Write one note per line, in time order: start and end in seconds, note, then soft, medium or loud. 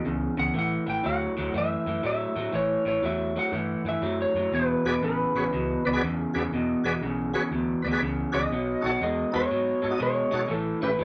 0.05 0.27 C#2 medium
0.05 0.34 E2 medium
0.05 0.34 C#3 medium
0.37 0.49 C#2 medium
0.37 0.53 E2 medium
0.37 0.53 C#3 medium
0.37 0.56 F#5 medium
0.54 0.77 A1 medium
0.54 0.83 A2 medium
0.54 0.84 E3 medium
0.59 0.89 F#5 loud
0.87 0.99 A1 medium
0.87 1.02 A2 medium
0.87 1.02 E3 medium
0.87 1.06 G5 medium
1.04 1.26 D2 medium
1.04 1.33 A2 medium
1.04 1.33 F#3 medium
1.04 1.56 F#5 medium
1.37 1.49 D2 medium
1.37 1.52 A2 medium
1.37 1.52 F#3 medium
1.53 1.76 F#2 medium
1.53 1.83 A2 medium
1.53 1.83 E3 medium
1.58 2.05 E5 medium
1.86 1.98 F#2 medium
1.86 2.02 A2 medium
1.86 2.02 E3 medium
2.03 2.33 A2 medium
2.03 2.26 A2 medium
2.03 2.33 F#3 medium
2.03 2.56 E5 loud
2.36 2.47 A2 medium
2.36 2.51 A2 medium
2.36 2.52 F#3 medium
2.52 2.75 A1 medium
2.52 2.82 A2 medium
2.52 2.82 E3 medium
2.52 2.85 C#5 medium
2.85 2.97 A1 medium
2.85 3.01 A2 medium
2.85 3.01 E3 medium
2.85 3.05 C#5 medium
3.03 3.37 E2 medium
3.03 3.32 A2 medium
3.03 3.32 F#3 medium
3.03 3.38 E5 medium
3.36 3.51 A2 medium
3.36 3.51 F#3 medium
3.36 3.88 F#5 medium
3.52 3.74 G2 medium
3.52 3.82 A2 medium
3.52 3.82 E3 medium
3.84 3.96 G2 medium
3.84 4.01 A2 medium
3.84 4.01 E3 medium
3.89 4.18 E5 medium
4.01 4.24 F#2 medium
4.01 4.31 A2 medium
4.01 4.32 F#3 medium
4.22 4.51 C#5 medium
4.34 4.46 F#2 medium
4.34 4.51 A2 medium
4.34 4.51 F#3 medium
4.51 4.74 E1 medium
4.51 4.82 E2 medium
4.51 4.82 B2 medium
4.51 4.85 B4 medium
4.84 4.96 E1 medium
4.84 5.00 E2 medium
4.84 5.01 B2 medium
4.84 4.94 F#4 medium
4.84 4.94 G#4 medium
4.84 5.02 B4 medium
4.84 4.94 B4 medium
4.84 4.95 D5 medium
5.01 5.24 A1 medium
5.01 5.31 E2 medium
5.01 5.32 C#3 medium
5.01 5.99 B4 medium
5.34 5.46 A1 medium
5.34 5.51 E2 medium
5.34 5.51 C#3 medium
5.34 5.44 F#4 medium
5.34 5.44 G#4 medium
5.34 5.44 B4 medium
5.34 5.44 C#5 medium
5.53 5.75 C#2 medium
5.53 5.82 E2 medium
5.53 5.82 B2 medium
5.85 5.96 C#2 medium
5.85 6.00 E2 medium
5.85 6.00 B2 medium
5.85 5.89 B4 medium
5.85 5.90 D5 medium
5.93 6.02 F#4 medium
5.93 6.02 G#4 medium
5.93 6.02 B4 medium
5.93 6.02 D5 medium
6.02 6.24 E2 medium
6.02 6.31 E2 medium
6.02 6.32 C#3 medium
6.34 6.46 E2 medium
6.34 6.50 E2 medium
6.34 6.50 C#3 medium
6.34 6.42 F#4 medium
6.34 6.43 G#4 medium
6.34 6.43 B4 medium
6.34 6.43 D5 medium
6.51 6.74 E1 medium
6.51 6.81 E2 medium
6.51 6.82 B2 medium
6.84 6.96 E1 medium
6.84 7.00 E2 medium
6.84 7.00 B2 medium
6.84 6.92 F#4 medium
6.84 6.93 G#4 medium
6.84 6.93 B4 medium
6.84 6.93 D5 medium
7.01 7.35 B1 medium
7.01 7.31 E2 medium
7.01 7.31 C#3 medium
7.34 7.50 E2 medium
7.34 7.50 C#3 medium
7.34 7.42 F#4 medium
7.34 7.42 G#4 medium
7.34 7.43 B4 medium
7.34 7.43 C#5 medium
7.51 7.73 D2 medium
7.51 7.81 E2 medium
7.51 7.81 B2 medium
7.82 7.96 D2 medium
7.82 7.99 E2 medium
7.82 8.00 B2 medium
7.82 7.87 B4 medium
7.82 7.88 D5 medium
7.91 8.00 F#4 medium
7.91 8.00 G#4 medium
7.91 8.01 B4 medium
7.91 8.01 D5 medium
8.01 8.23 C#2 medium
8.01 8.30 E2 medium
8.01 8.31 C#3 medium
8.32 8.45 C#2 medium
8.32 8.49 E2 medium
8.32 8.49 C#3 medium
8.32 8.41 F#4 medium
8.32 8.42 G#4 medium
8.32 8.42 B4 medium
8.32 8.42 D5 medium
8.32 8.85 D#5 loud
8.51 8.73 B1 medium
8.51 8.80 B2 medium
8.51 8.81 F#3 medium
8.81 8.95 B1 medium
8.81 8.99 B2 medium
8.81 8.99 F#3 medium
8.81 8.91 D#4 medium
8.81 8.91 F#4 medium
8.81 8.91 A4 medium
8.81 8.91 C#5 medium
8.86 9.02 F#5 medium
9.01 9.23 E2 medium
9.01 9.30 B2 medium
9.01 9.30 G#3 medium
9.01 9.32 D#5 medium
9.32 9.45 E2 medium
9.32 9.49 B2 medium
9.32 9.49 G#3 medium
9.32 9.41 D#4 medium
9.32 9.42 F#4 medium
9.32 9.42 A4 medium
9.32 9.42 B4 medium
9.32 10.01 C#5 medium
9.50 9.73 G#2 medium
9.50 9.79 B2 medium
9.50 9.80 F#3 medium
9.82 9.95 G#2 medium
9.82 9.98 B2 medium
9.82 9.98 F#3 medium
9.82 9.87 A4 medium
9.82 9.87 C#5 medium
9.90 9.99 D#4 medium
9.90 10.00 F#4 soft
9.90 10.00 A4 medium
9.90 10.00 D#5 medium
9.99 10.29 B2 medium
9.99 10.22 B2 medium
9.99 10.29 G#3 medium
9.99 10.52 C#5 medium
10.31 10.47 B2 medium
10.31 10.45 B2 medium
10.31 10.47 G#3 medium
10.31 10.41 D#4 medium
10.31 10.41 F#4 medium
10.31 10.41 A4 medium
10.31 10.41 C#5 medium
10.48 10.72 A1 medium
10.48 10.78 A2 medium
10.48 10.78 E3 loud
10.48 10.81 A4 medium
10.81 10.94 A1 medium
10.81 10.97 A2 medium
10.81 10.98 E3 medium
10.81 10.91 C#4 medium
10.81 10.91 E4 medium
10.81 10.91 G4 medium
10.81 10.91 B4 medium
10.81 11.01 B4 medium
10.99 11.04 E2 medium
10.99 11.04 A2 medium
10.99 11.04 F#3 medium